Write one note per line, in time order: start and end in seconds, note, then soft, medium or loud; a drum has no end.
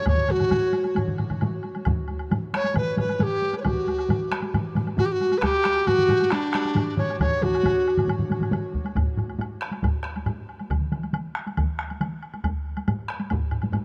0.06 0.32 C#5 medium
0.06 taiko loud
0.06 taiko low-mid medium
0.06 taiko mid medium
0.06 taiko high medium
0.06 high woodblock medium
0.18 taiko low-mid medium
0.18 taiko mid medium
0.28 0.97 F#4 loud
0.28 taiko low-mid medium
0.28 taiko mid medium
0.28 taiko high medium
0.28 high woodblock soft
0.39 taiko low-mid medium
0.39 taiko mid medium
0.39 taiko high soft
0.39 high woodblock soft
0.51 taiko low-mid medium
0.51 taiko mid medium
0.51 taiko high medium
0.51 high woodblock soft
0.73 taiko high medium
0.73 high woodblock soft
0.84 taiko high soft
0.84 high woodblock soft
0.95 taiko low-mid medium
0.95 taiko mid medium
0.95 taiko high medium
0.95 high woodblock medium
1.08 taiko low-mid medium
1.08 taiko mid medium
1.18 taiko low-mid medium
1.18 taiko mid medium
1.18 taiko high medium
1.18 high woodblock soft
1.30 taiko low-mid medium
1.30 taiko mid medium
1.30 taiko high medium
1.30 high woodblock soft
1.41 taiko low-mid loud
1.41 taiko mid medium
1.41 taiko high medium
1.41 high woodblock soft
1.63 taiko high soft
1.63 high woodblock soft
1.75 taiko high soft
1.75 high woodblock soft
1.85 taiko loud
1.85 taiko low-mid loud
1.85 taiko mid loud
1.85 taiko high medium
1.85 high woodblock medium
2.08 taiko high soft
2.08 high woodblock soft
2.19 high woodblock soft
2.31 taiko low-mid medium
2.31 taiko mid medium
2.31 taiko high medium
2.31 high woodblock soft
2.53 2.75 C#5 medium
2.53 taiko rim medium
2.53 taiko high medium
2.53 high woodblock soft
2.64 taiko high medium
2.64 high woodblock soft
2.74 2.97 B4 medium
2.74 taiko low-mid loud
2.74 taiko mid loud
2.74 taiko high medium
2.74 high woodblock medium
2.96 3.24 B4 medium
2.96 taiko low-mid loud
2.96 taiko mid medium
2.96 taiko high medium
2.96 high woodblock soft
3.08 taiko high medium
3.08 high woodblock soft
3.19 3.57 G4 loud
3.19 taiko low-mid loud
3.19 taiko mid medium
3.19 taiko high medium
3.19 high woodblock soft
3.42 taiko high soft
3.53 taiko high medium
3.53 high woodblock soft
3.58 3.60 B4 soft
3.58 3.63 C#5 soft
3.63 3.67 D4 soft
3.63 4.54 F#4 medium
3.63 taiko loud
3.63 taiko low-mid medium
3.63 taiko mid medium
3.63 taiko high medium
3.63 high woodblock medium
3.87 taiko high soft
3.87 high woodblock soft
3.99 high woodblock soft
4.09 taiko low-mid medium
4.09 taiko mid medium
4.09 taiko high medium
4.09 high woodblock soft
4.31 taiko rim medium
4.31 taiko high soft
4.31 high woodblock soft
4.42 taiko high soft
4.42 high woodblock soft
4.54 taiko low-mid medium
4.54 taiko mid loud
4.54 taiko high medium
4.54 high woodblock medium
4.75 taiko low-mid loud
4.75 taiko mid loud
4.75 taiko high medium
4.75 high woodblock soft
4.86 taiko high medium
4.86 high woodblock soft
4.97 5.07 F#4 loud
4.97 taiko low-mid loud
4.97 taiko mid loud
4.97 taiko high medium
4.97 high woodblock soft
5.05 5.13 G4 medium
5.11 5.39 F#4 loud
5.20 taiko high medium
5.20 high woodblock soft
5.32 taiko high medium
5.32 high woodblock soft
5.37 5.44 B4 medium
5.42 5.88 G4 loud
5.42 taiko rim medium
5.42 taiko medium
5.42 taiko high medium
5.42 high woodblock soft
5.64 taiko rim medium
5.64 taiko high medium
5.64 high woodblock soft
5.76 high woodblock soft
5.87 6.33 F#4 loud
5.87 taiko low-mid medium
5.87 taiko mid medium
5.87 taiko high medium
5.87 high woodblock soft
5.98 taiko low-mid medium
5.98 taiko mid medium
6.08 taiko low-mid loud
6.08 taiko mid medium
6.08 taiko high medium
6.08 high woodblock soft
6.20 taiko high medium
6.20 high woodblock soft
6.30 6.97 D4 loud
6.30 taiko rim medium
6.30 taiko high medium
6.30 high woodblock medium
6.53 taiko rim medium
6.53 taiko high medium
6.53 high woodblock soft
6.65 taiko high soft
6.65 high woodblock soft
6.75 taiko low-mid loud
6.75 taiko mid medium
6.75 taiko high medium
6.75 high woodblock soft
6.97 7.18 C#5 medium
6.97 taiko low-mid medium
6.97 taiko mid medium
6.97 taiko high medium
6.97 high woodblock soft
7.09 taiko high medium
7.09 high woodblock soft
7.19 7.44 C#5 medium
7.19 taiko loud
7.19 taiko low-mid loud
7.19 taiko mid loud
7.19 taiko high medium
7.19 high woodblock medium
7.41 8.08 F#4 medium
7.41 taiko low-mid loud
7.41 taiko mid loud
7.41 taiko high medium
7.41 high woodblock soft
7.55 high woodblock soft
7.63 taiko medium
7.63 taiko low-mid medium
7.63 taiko mid medium
7.63 taiko high medium
7.63 high woodblock medium
7.88 high woodblock soft
7.97 taiko low-mid medium
7.97 taiko mid medium
7.97 taiko high medium
7.97 high woodblock soft
8.08 taiko low-mid medium
8.08 taiko mid medium
8.08 taiko high medium
8.08 high woodblock medium
8.19 taiko low-mid medium
8.19 taiko mid medium
8.30 taiko low-mid medium
8.30 taiko mid medium
8.30 taiko high medium
8.30 high woodblock soft
8.40 taiko low-mid medium
8.40 taiko mid medium
8.40 taiko high medium
8.40 high woodblock soft
8.51 taiko low-mid loud
8.51 taiko mid medium
8.51 taiko high medium
8.51 high woodblock soft
8.74 taiko medium
8.74 taiko high medium
8.85 taiko high medium
8.85 high woodblock soft
8.95 taiko loud
8.95 taiko low-mid medium
8.95 taiko high medium
8.95 high woodblock soft
9.06 taiko low-mid medium
9.17 taiko low-mid medium
9.17 high woodblock soft
9.28 taiko high soft
9.28 high woodblock soft
9.38 taiko low-mid medium
9.38 taiko high medium
9.38 high woodblock soft
9.61 taiko rim medium
9.61 high woodblock soft
9.71 taiko high soft
9.71 high woodblock soft
9.83 taiko medium
9.83 taiko low-mid medium
9.83 taiko high medium
9.83 high woodblock soft
10.04 taiko rim medium
10.16 taiko high soft
10.16 high woodblock soft
10.26 taiko low-mid medium
10.26 taiko high medium
10.26 high woodblock soft
10.49 high woodblock soft
10.59 taiko high soft
10.59 high woodblock soft
10.70 taiko loud
10.70 taiko mid medium
10.70 taiko high medium
10.70 high woodblock soft
10.81 taiko mid medium
10.92 taiko mid medium
10.92 high woodblock soft
11.03 taiko high soft
11.03 high woodblock soft
11.13 taiko mid medium
11.13 taiko high medium
11.13 high woodblock soft
11.35 taiko rim medium
11.35 high woodblock soft
11.47 taiko high soft
11.47 high woodblock soft
11.57 taiko medium
11.57 taiko mid medium
11.57 taiko high medium
11.57 high woodblock medium
11.79 taiko rim medium
11.79 high woodblock soft
11.90 taiko high soft
11.90 high woodblock soft
12.01 taiko mid medium
12.01 taiko high medium
12.01 high woodblock soft
12.23 high woodblock soft
12.34 taiko high medium
12.34 high woodblock soft
12.44 taiko medium
12.44 taiko high medium
12.44 high woodblock medium
12.77 taiko high soft
12.77 high woodblock soft
12.88 taiko low-mid loud
12.88 taiko high medium
12.88 high woodblock soft
13.08 taiko rim medium
13.08 high woodblock soft
13.20 taiko high medium
13.20 high woodblock soft
13.30 taiko medium
13.30 taiko low-mid medium
13.30 taiko high medium
13.30 high woodblock soft
13.51 taiko low-mid medium
13.51 high woodblock soft
13.62 taiko low-mid medium
13.62 taiko high medium
13.62 high woodblock soft
13.72 taiko low-mid loud
13.72 taiko high medium
13.72 high woodblock soft